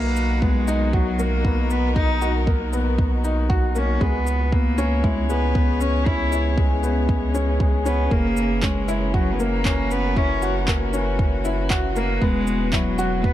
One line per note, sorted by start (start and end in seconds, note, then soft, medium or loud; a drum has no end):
0.00 3.99 B1 medium
0.00 4.01 D#3 medium
0.00 0.44 A#3 loud
0.00 5.46 F#4 medium
0.16 shaker medium
0.42 0.95 G#3 loud
0.42 0.67 B3 medium
0.42 kick loud
0.53 4.01 A#4 medium
0.68 0.92 D#4 loud
0.68 shaker medium
0.93 1.21 F#3 loud
0.93 1.18 F#4 medium
0.93 kick loud
1.19 1.43 A#3 medium
1.19 1.72 A#3 loud
1.19 shaker medium
1.45 1.69 B3 medium
1.45 kick loud
1.70 1.95 B3 loud
1.70 shaker medium
1.96 2.11 D#4 loud
1.96 2.44 D#4 loud
1.96 kick loud
2.21 2.46 F#4 medium
2.21 shaker medium
2.47 2.72 A#3 medium
2.47 kick loud
2.73 2.97 B3 medium
2.73 shaker medium
2.98 kick loud
3.24 3.49 D#4 medium
3.24 shaker medium
3.49 3.74 F#4 medium
3.49 kick loud
3.75 4.00 A#3 medium
3.75 4.03 C#4 medium
3.75 shaker medium
4.01 8.09 C#2 medium
4.01 13.33 E3 medium
4.01 4.16 G#3 medium
4.01 4.54 B3 loud
4.01 kick loud
4.27 shaker medium
4.52 5.05 A#3 loud
4.52 4.77 B3 medium
4.52 kick loud
4.66 13.33 C#4 medium
4.70 8.12 C#5 medium
4.78 5.02 C#4 loud
4.78 shaker medium
5.04 5.29 G#3 loud
5.04 5.28 E4 medium
5.04 kick loud
5.29 5.54 G#3 medium
5.29 5.82 B3 loud
5.29 shaker medium
5.55 5.79 B3 medium
5.55 kick loud
5.60 9.55 G#4 medium
5.80 6.08 C#4 loud
5.80 shaker medium
6.06 6.21 C#4 medium
6.06 6.58 E4 loud
6.06 kick loud
6.32 6.56 E4 medium
6.32 shaker medium
6.57 6.82 G#3 medium
6.57 kick loud
6.83 7.07 B3 medium
6.83 shaker medium
7.09 kick loud
7.34 7.49 C#4 medium
7.34 shaker medium
7.60 7.85 G#3 medium
7.60 kick loud
7.86 8.13 B3 loud
7.86 8.10 C#4 loud
7.86 shaker medium
8.11 12.19 F#1 medium
8.11 8.26 A#3 loud
8.11 8.65 A#3 loud
8.11 kick loud
8.37 shaker medium
8.63 9.14 G#3 loud
8.63 8.87 C#4 medium
8.63 kick loud
8.63 clap medium
8.80 12.22 A#4 medium
8.88 9.13 E4 loud
8.88 shaker medium
9.14 9.34 F#3 medium
9.14 9.38 F#4 medium
9.14 kick loud
9.33 9.41 B3 medium
9.40 9.64 A#3 medium
9.40 9.93 A#3 loud
9.40 shaker medium
9.50 13.33 F#4 medium
9.65 9.90 C#4 medium
9.65 kick loud
9.65 clap medium
9.91 10.18 B3 loud
9.91 shaker medium
10.17 10.68 C#4 loud
10.17 10.31 E4 loud
10.17 kick loud
10.42 10.67 F#4 medium
10.42 shaker medium
10.68 10.92 A#3 medium
10.68 kick loud
10.68 clap medium
10.93 11.18 C#4 medium
10.93 shaker medium
11.19 kick loud
11.45 11.69 E4 medium
11.45 shaker medium
11.70 11.95 F#4 loud
11.70 kick loud
11.70 clap medium
11.96 12.23 A#3 loud
11.96 12.20 A#3 medium
11.96 shaker medium
12.21 13.33 E1 medium
12.21 12.75 G#3 loud
12.21 12.36 B3 loud
12.21 kick loud
12.47 shaker medium
12.73 13.26 F#3 loud
12.73 12.97 E4 medium
12.73 kick loud
12.73 clap medium
12.99 13.23 F#4 loud
12.99 shaker medium
13.24 13.33 B3 loud
13.24 13.33 B4 medium
13.24 kick loud